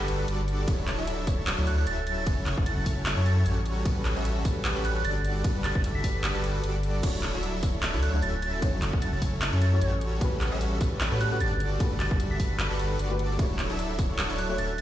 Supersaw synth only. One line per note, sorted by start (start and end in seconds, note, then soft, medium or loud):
0.00 0.26 G3 medium
0.00 0.26 D4 medium
0.00 0.26 F#4 medium
0.00 0.26 A4 medium
0.00 0.26 B4 loud
0.28 0.65 G3 medium
0.28 0.65 D4 medium
0.28 0.65 F#4 medium
0.28 0.65 A4 medium
0.28 0.65 D5 medium
0.67 0.96 F#3 loud
0.67 0.96 D4 medium
0.67 0.96 E4 medium
0.67 0.96 A4 medium
0.67 0.96 C#5 loud
0.98 1.25 F#3 medium
0.98 1.25 D4 medium
0.98 1.25 E4 medium
0.98 1.25 A4 medium
0.98 1.25 E5 medium
1.27 1.55 F#3 loud
1.27 1.55 D4 medium
1.27 1.55 E4 medium
1.27 1.55 A4 medium
1.27 1.55 C#5 loud
1.58 1.85 F#3 medium
1.58 1.85 D4 medium
1.58 1.85 E4 medium
1.58 1.85 A4 medium
1.58 1.85 C#5 loud
1.87 2.24 F#3 medium
1.87 2.24 C#4 medium
1.87 2.25 E4 medium
1.87 2.25 A4 medium
1.87 2.25 E5 medium
2.26 2.55 F#3 loud
2.26 2.55 C#4 medium
2.26 2.55 E4 loud
2.26 2.55 A4 medium
2.26 2.55 C#5 loud
2.57 2.84 F#3 medium
2.57 2.84 C#4 medium
2.57 2.84 E4 medium
2.57 2.84 A4 medium
2.57 2.84 F#5 medium
2.86 3.14 F#3 medium
2.86 3.14 C#4 medium
2.86 3.14 E4 medium
2.86 3.14 A4 medium
2.86 3.14 C#5 loud
3.17 3.44 F#3 medium
3.17 3.44 C#4 medium
3.17 3.44 E4 medium
3.17 3.44 A4 medium
3.17 3.44 C#5 loud
3.46 3.83 G3 medium
3.46 3.83 C#4 medium
3.46 3.83 F#4 medium
3.46 3.83 A4 medium
3.46 3.83 C#5 medium
3.85 4.14 G3 loud
3.85 4.14 C#4 loud
3.85 4.14 F#4 medium
3.85 4.14 A4 loud
3.85 4.14 B4 loud
4.16 4.43 G3 medium
4.16 4.43 C#4 medium
4.16 4.43 F#4 medium
4.16 4.43 A4 medium
4.16 4.43 E5 medium
4.45 4.73 G3 loud
4.45 4.73 C#4 medium
4.45 4.73 F#4 medium
4.45 4.73 A4 medium
4.45 4.73 B4 loud
4.76 5.03 G3 loud
4.76 5.03 C#4 medium
4.76 5.03 F#4 medium
4.76 5.03 A4 medium
4.76 5.03 B4 loud
5.05 5.42 G3 medium
5.05 5.42 D4 medium
5.05 5.42 F#4 medium
5.05 5.42 A4 medium
5.05 5.42 D5 medium
5.44 5.73 G3 loud
5.44 5.73 D4 medium
5.44 5.73 F#4 loud
5.44 5.73 A4 medium
5.44 5.73 B4 loud
5.75 6.02 G3 medium
5.75 6.02 D4 medium
5.75 6.02 F#4 medium
5.75 6.02 A4 medium
5.75 6.02 E5 loud
6.04 6.32 G3 loud
6.04 6.32 D4 medium
6.04 6.32 F#4 medium
6.04 6.32 A4 medium
6.04 6.32 B4 loud
6.35 6.61 G3 medium
6.35 6.61 D4 medium
6.35 6.61 F#4 medium
6.35 6.61 A4 medium
6.35 6.61 B4 loud
6.63 7.01 G3 medium
6.63 7.01 D4 medium
6.63 7.01 F#4 medium
6.63 7.01 A4 medium
6.63 7.01 D5 medium
7.03 7.32 D4 loud
7.03 7.32 E4 medium
7.03 7.32 A4 medium
7.03 7.32 C#5 loud
7.34 7.61 F#3 medium
7.34 7.61 D4 medium
7.34 7.61 E4 medium
7.34 7.61 A4 medium
7.34 7.61 E5 medium
7.63 7.91 F#3 medium
7.63 7.91 D4 medium
7.63 7.91 E4 medium
7.63 7.91 A4 medium
7.63 7.91 C#5 loud
7.94 8.20 F#3 medium
7.94 8.20 D4 medium
7.94 8.20 E4 medium
7.94 8.20 A4 medium
7.94 8.20 C#5 loud
8.22 8.60 F#3 medium
8.22 8.60 C#4 medium
8.22 8.60 E4 medium
8.22 8.60 A4 medium
8.22 8.60 E5 medium
8.62 8.91 F#3 loud
8.62 8.91 C#4 medium
8.62 8.91 E4 medium
8.62 8.91 A4 medium
8.62 8.91 C#5 loud
8.93 9.20 F#3 medium
8.93 9.20 C#4 medium
8.93 9.20 E4 medium
8.93 9.20 A4 medium
8.93 9.20 F#5 medium
9.22 9.50 F#3 loud
9.22 9.50 C#4 medium
9.22 9.50 E4 medium
9.22 9.50 A4 medium
9.22 9.50 C#5 loud
9.53 9.79 F#3 medium
9.53 9.79 C#4 medium
9.53 9.79 E4 medium
9.53 9.79 A4 medium
9.53 9.79 C#5 loud
9.81 10.19 G3 medium
9.81 10.19 C#4 medium
9.81 10.19 F#4 medium
9.81 10.19 A4 medium
9.81 10.19 C#5 medium
10.21 10.49 G3 loud
10.21 10.49 C#4 medium
10.21 10.49 F#4 loud
10.21 10.49 A4 loud
10.21 10.49 B4 loud
10.52 10.79 G3 medium
10.52 10.79 C#4 medium
10.52 10.79 F#4 medium
10.52 10.79 A4 medium
10.52 10.79 E5 loud
10.80 11.09 G3 loud
10.80 11.09 F#4 medium
10.80 11.09 B4 loud
11.12 11.38 G3 loud
11.12 11.38 C#4 medium
11.12 11.38 F#4 medium
11.12 11.38 A4 medium
11.12 11.38 B4 loud
11.40 11.78 G3 medium
11.40 11.78 D4 medium
11.40 11.78 F#4 medium
11.40 11.78 A4 medium
11.40 11.78 D5 medium
11.80 12.08 G3 loud
11.80 12.08 D4 loud
11.80 12.08 F#4 loud
11.80 12.08 A4 loud
11.80 12.08 B4 loud
12.11 12.38 G3 medium
12.11 12.38 D4 medium
12.11 12.38 F#4 medium
12.11 12.38 A4 medium
12.11 12.38 E5 medium
12.39 12.68 G3 loud
12.39 12.68 D4 medium
12.39 12.68 F#4 medium
12.39 12.68 A4 medium
12.39 12.68 B4 loud
12.70 12.97 G3 medium
12.70 12.97 D4 medium
12.70 12.97 F#4 medium
12.70 12.97 A4 medium
12.70 12.97 B4 loud
12.99 13.37 G3 medium
12.99 13.37 D4 medium
12.99 13.37 F#4 medium
12.99 13.37 A4 medium
12.99 13.37 D5 medium
13.39 13.67 F#3 loud
13.39 13.67 D4 medium
13.39 13.67 E4 medium
13.39 13.67 A4 medium
13.39 13.67 C#5 loud
13.70 13.97 F#3 medium
13.70 13.97 D4 medium
13.70 13.97 E4 medium
13.70 13.97 A4 medium
13.70 13.97 E5 loud
13.99 14.27 F#3 loud
13.99 14.27 D4 medium
13.99 14.27 E4 medium
13.99 14.27 A4 medium
13.99 14.27 C#5 loud
14.30 14.56 F#3 loud
14.30 14.56 D4 medium
14.30 14.56 E4 medium
14.30 14.56 A4 medium
14.30 14.56 C#5 loud
14.58 14.81 F#3 medium
14.58 14.81 C#4 medium
14.58 14.81 E4 medium
14.58 14.81 A4 medium
14.58 14.81 E5 medium